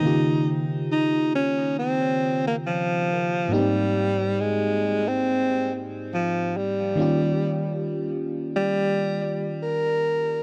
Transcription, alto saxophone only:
X:1
M:4/4
L:1/16
Q:"Swing 16ths" 1/4=69
K:Ebmix
V:1 name="Alto saxophone"
E3 z E2 D2 C3 B, F,4 | G,4 A,3 C4 z F,2 G,2- | G,4- G, z2 G,4- G, B4 |]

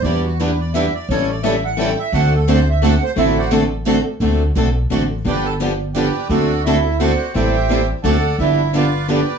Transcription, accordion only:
X:1
M:3/4
L:1/8
Q:"Swing" 1/4=172
K:Dmix
V:1 name="Accordion"
d F B d e d | ^c d e f g e | f A c e f c | [Ee] [Fcdf] z4 |
z6 | [GBdg] [Aa] z2 [GBdg]2 | [DFAd]2 [Ee]2 [Fcdf]2 | [Gceg]3 z [Adfa]2 |
[Ee]2 [=FBd=f]2 [GBdg]2 |]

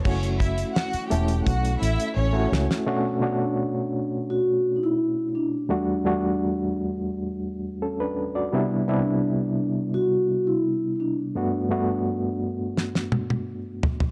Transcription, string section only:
X:1
M:4/4
L:1/16
Q:1/4=85
K:Bm
V:1 name="String section"
[Cc]2 [Ee]2 [Ff]2 [Gg]2 [Ff]2 [Ee]2 [Cc]3 z | z16 | z16 | z16 |
z16 |]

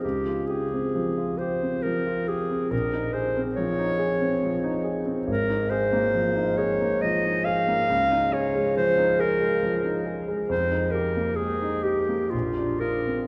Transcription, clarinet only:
X:1
M:3/4
L:1/8
Q:1/4=69
K:Dblyd
V:1 name="Clarinet"
G A2 c B A | B c d3 z | B c2 d e f- | f d c B2 z |
c B A G F B |]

